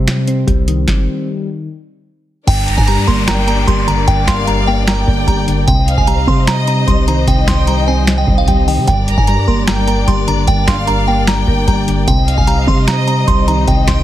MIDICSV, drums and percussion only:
0, 0, Header, 1, 2, 480
1, 0, Start_track
1, 0, Key_signature, -2, "minor"
1, 0, Tempo, 400000
1, 1051, Time_signature, 4, 2, 24, 8
1, 16841, End_track
2, 0, Start_track
2, 0, Title_t, "Drums"
2, 91, Note_on_c, 9, 26, 93
2, 91, Note_on_c, 9, 38, 111
2, 92, Note_on_c, 9, 42, 92
2, 211, Note_off_c, 9, 26, 0
2, 211, Note_off_c, 9, 38, 0
2, 212, Note_off_c, 9, 42, 0
2, 330, Note_on_c, 9, 42, 78
2, 450, Note_off_c, 9, 42, 0
2, 570, Note_on_c, 9, 36, 105
2, 572, Note_on_c, 9, 42, 71
2, 690, Note_off_c, 9, 36, 0
2, 692, Note_off_c, 9, 42, 0
2, 814, Note_on_c, 9, 42, 78
2, 934, Note_off_c, 9, 42, 0
2, 1051, Note_on_c, 9, 36, 112
2, 1051, Note_on_c, 9, 38, 92
2, 1171, Note_off_c, 9, 36, 0
2, 1171, Note_off_c, 9, 38, 0
2, 2970, Note_on_c, 9, 42, 94
2, 2971, Note_on_c, 9, 36, 123
2, 2971, Note_on_c, 9, 49, 106
2, 3090, Note_off_c, 9, 42, 0
2, 3091, Note_off_c, 9, 36, 0
2, 3091, Note_off_c, 9, 49, 0
2, 3216, Note_on_c, 9, 42, 84
2, 3332, Note_on_c, 9, 36, 108
2, 3336, Note_off_c, 9, 42, 0
2, 3449, Note_on_c, 9, 42, 81
2, 3452, Note_off_c, 9, 36, 0
2, 3569, Note_off_c, 9, 42, 0
2, 3691, Note_on_c, 9, 36, 95
2, 3811, Note_off_c, 9, 36, 0
2, 3931, Note_on_c, 9, 26, 96
2, 3931, Note_on_c, 9, 38, 121
2, 3932, Note_on_c, 9, 42, 94
2, 4051, Note_off_c, 9, 26, 0
2, 4051, Note_off_c, 9, 38, 0
2, 4052, Note_off_c, 9, 42, 0
2, 4171, Note_on_c, 9, 42, 80
2, 4291, Note_off_c, 9, 42, 0
2, 4411, Note_on_c, 9, 36, 108
2, 4414, Note_on_c, 9, 42, 74
2, 4531, Note_off_c, 9, 36, 0
2, 4534, Note_off_c, 9, 42, 0
2, 4655, Note_on_c, 9, 42, 80
2, 4775, Note_off_c, 9, 42, 0
2, 4891, Note_on_c, 9, 42, 93
2, 4892, Note_on_c, 9, 36, 119
2, 5011, Note_off_c, 9, 42, 0
2, 5012, Note_off_c, 9, 36, 0
2, 5131, Note_on_c, 9, 36, 93
2, 5132, Note_on_c, 9, 26, 82
2, 5132, Note_on_c, 9, 38, 98
2, 5136, Note_on_c, 9, 42, 87
2, 5251, Note_off_c, 9, 36, 0
2, 5252, Note_off_c, 9, 26, 0
2, 5252, Note_off_c, 9, 38, 0
2, 5256, Note_off_c, 9, 42, 0
2, 5369, Note_on_c, 9, 42, 82
2, 5489, Note_off_c, 9, 42, 0
2, 5850, Note_on_c, 9, 38, 118
2, 5851, Note_on_c, 9, 26, 99
2, 5852, Note_on_c, 9, 42, 94
2, 5970, Note_off_c, 9, 38, 0
2, 5971, Note_off_c, 9, 26, 0
2, 5972, Note_off_c, 9, 42, 0
2, 6091, Note_on_c, 9, 36, 102
2, 6211, Note_off_c, 9, 36, 0
2, 6330, Note_on_c, 9, 36, 109
2, 6333, Note_on_c, 9, 42, 72
2, 6450, Note_off_c, 9, 36, 0
2, 6453, Note_off_c, 9, 42, 0
2, 6574, Note_on_c, 9, 42, 85
2, 6694, Note_off_c, 9, 42, 0
2, 6810, Note_on_c, 9, 42, 97
2, 6811, Note_on_c, 9, 36, 122
2, 6930, Note_off_c, 9, 42, 0
2, 6931, Note_off_c, 9, 36, 0
2, 7056, Note_on_c, 9, 42, 87
2, 7172, Note_on_c, 9, 36, 108
2, 7176, Note_off_c, 9, 42, 0
2, 7288, Note_on_c, 9, 42, 80
2, 7292, Note_off_c, 9, 36, 0
2, 7408, Note_off_c, 9, 42, 0
2, 7531, Note_on_c, 9, 36, 95
2, 7651, Note_off_c, 9, 36, 0
2, 7769, Note_on_c, 9, 38, 115
2, 7770, Note_on_c, 9, 26, 98
2, 7771, Note_on_c, 9, 42, 90
2, 7889, Note_off_c, 9, 38, 0
2, 7890, Note_off_c, 9, 26, 0
2, 7891, Note_off_c, 9, 42, 0
2, 8010, Note_on_c, 9, 42, 84
2, 8130, Note_off_c, 9, 42, 0
2, 8250, Note_on_c, 9, 36, 107
2, 8252, Note_on_c, 9, 42, 71
2, 8370, Note_off_c, 9, 36, 0
2, 8372, Note_off_c, 9, 42, 0
2, 8494, Note_on_c, 9, 42, 78
2, 8614, Note_off_c, 9, 42, 0
2, 8730, Note_on_c, 9, 42, 91
2, 8731, Note_on_c, 9, 36, 118
2, 8850, Note_off_c, 9, 42, 0
2, 8851, Note_off_c, 9, 36, 0
2, 8971, Note_on_c, 9, 36, 94
2, 8971, Note_on_c, 9, 38, 99
2, 8972, Note_on_c, 9, 26, 78
2, 8975, Note_on_c, 9, 42, 84
2, 9091, Note_off_c, 9, 36, 0
2, 9091, Note_off_c, 9, 38, 0
2, 9092, Note_off_c, 9, 26, 0
2, 9095, Note_off_c, 9, 42, 0
2, 9209, Note_on_c, 9, 42, 80
2, 9329, Note_off_c, 9, 42, 0
2, 9689, Note_on_c, 9, 26, 96
2, 9689, Note_on_c, 9, 38, 121
2, 9690, Note_on_c, 9, 42, 93
2, 9809, Note_off_c, 9, 26, 0
2, 9809, Note_off_c, 9, 38, 0
2, 9810, Note_off_c, 9, 42, 0
2, 9931, Note_on_c, 9, 36, 105
2, 10051, Note_off_c, 9, 36, 0
2, 10170, Note_on_c, 9, 36, 108
2, 10172, Note_on_c, 9, 42, 76
2, 10290, Note_off_c, 9, 36, 0
2, 10292, Note_off_c, 9, 42, 0
2, 10414, Note_on_c, 9, 46, 83
2, 10534, Note_off_c, 9, 46, 0
2, 10650, Note_on_c, 9, 42, 91
2, 10651, Note_on_c, 9, 36, 117
2, 10770, Note_off_c, 9, 42, 0
2, 10771, Note_off_c, 9, 36, 0
2, 10895, Note_on_c, 9, 42, 86
2, 11012, Note_on_c, 9, 36, 107
2, 11015, Note_off_c, 9, 42, 0
2, 11128, Note_on_c, 9, 42, 81
2, 11132, Note_off_c, 9, 36, 0
2, 11248, Note_off_c, 9, 42, 0
2, 11371, Note_on_c, 9, 36, 93
2, 11491, Note_off_c, 9, 36, 0
2, 11610, Note_on_c, 9, 26, 96
2, 11610, Note_on_c, 9, 38, 119
2, 11611, Note_on_c, 9, 42, 92
2, 11730, Note_off_c, 9, 26, 0
2, 11730, Note_off_c, 9, 38, 0
2, 11731, Note_off_c, 9, 42, 0
2, 11850, Note_on_c, 9, 42, 82
2, 11970, Note_off_c, 9, 42, 0
2, 12090, Note_on_c, 9, 36, 107
2, 12093, Note_on_c, 9, 42, 76
2, 12210, Note_off_c, 9, 36, 0
2, 12213, Note_off_c, 9, 42, 0
2, 12333, Note_on_c, 9, 42, 79
2, 12453, Note_off_c, 9, 42, 0
2, 12570, Note_on_c, 9, 42, 96
2, 12571, Note_on_c, 9, 36, 124
2, 12690, Note_off_c, 9, 42, 0
2, 12691, Note_off_c, 9, 36, 0
2, 12811, Note_on_c, 9, 26, 81
2, 12811, Note_on_c, 9, 36, 92
2, 12811, Note_on_c, 9, 38, 104
2, 12815, Note_on_c, 9, 42, 85
2, 12931, Note_off_c, 9, 26, 0
2, 12931, Note_off_c, 9, 36, 0
2, 12931, Note_off_c, 9, 38, 0
2, 12935, Note_off_c, 9, 42, 0
2, 13049, Note_on_c, 9, 42, 81
2, 13169, Note_off_c, 9, 42, 0
2, 13529, Note_on_c, 9, 38, 121
2, 13530, Note_on_c, 9, 26, 94
2, 13530, Note_on_c, 9, 42, 89
2, 13649, Note_off_c, 9, 38, 0
2, 13650, Note_off_c, 9, 26, 0
2, 13650, Note_off_c, 9, 42, 0
2, 13771, Note_on_c, 9, 36, 106
2, 13891, Note_off_c, 9, 36, 0
2, 14010, Note_on_c, 9, 36, 108
2, 14012, Note_on_c, 9, 42, 73
2, 14130, Note_off_c, 9, 36, 0
2, 14132, Note_off_c, 9, 42, 0
2, 14255, Note_on_c, 9, 42, 86
2, 14375, Note_off_c, 9, 42, 0
2, 14491, Note_on_c, 9, 42, 97
2, 14492, Note_on_c, 9, 36, 123
2, 14611, Note_off_c, 9, 42, 0
2, 14612, Note_off_c, 9, 36, 0
2, 14736, Note_on_c, 9, 42, 84
2, 14852, Note_on_c, 9, 36, 108
2, 14856, Note_off_c, 9, 42, 0
2, 14968, Note_on_c, 9, 42, 79
2, 14972, Note_off_c, 9, 36, 0
2, 15088, Note_off_c, 9, 42, 0
2, 15211, Note_on_c, 9, 36, 96
2, 15331, Note_off_c, 9, 36, 0
2, 15451, Note_on_c, 9, 26, 95
2, 15451, Note_on_c, 9, 38, 122
2, 15452, Note_on_c, 9, 42, 96
2, 15571, Note_off_c, 9, 26, 0
2, 15571, Note_off_c, 9, 38, 0
2, 15572, Note_off_c, 9, 42, 0
2, 15691, Note_on_c, 9, 42, 84
2, 15811, Note_off_c, 9, 42, 0
2, 15930, Note_on_c, 9, 36, 105
2, 15933, Note_on_c, 9, 42, 74
2, 16050, Note_off_c, 9, 36, 0
2, 16053, Note_off_c, 9, 42, 0
2, 16175, Note_on_c, 9, 42, 82
2, 16295, Note_off_c, 9, 42, 0
2, 16410, Note_on_c, 9, 42, 91
2, 16411, Note_on_c, 9, 36, 123
2, 16530, Note_off_c, 9, 42, 0
2, 16531, Note_off_c, 9, 36, 0
2, 16651, Note_on_c, 9, 26, 78
2, 16651, Note_on_c, 9, 36, 95
2, 16651, Note_on_c, 9, 38, 102
2, 16655, Note_on_c, 9, 42, 85
2, 16771, Note_off_c, 9, 26, 0
2, 16771, Note_off_c, 9, 36, 0
2, 16771, Note_off_c, 9, 38, 0
2, 16775, Note_off_c, 9, 42, 0
2, 16841, End_track
0, 0, End_of_file